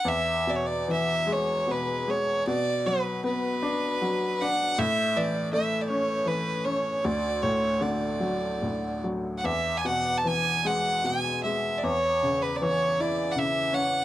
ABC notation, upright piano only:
X:1
M:3/4
L:1/8
Q:1/4=77
K:Emix
V:1 name="Upright piano" clef=bass
E,, B,, E, G, B,, G, | B,, F, B, D F, D | A,, E, A, C E, C | D,, A,, D, F, A,, F, |
E,, B,, E, G, B,, G, | E,, C, E, E C, C |]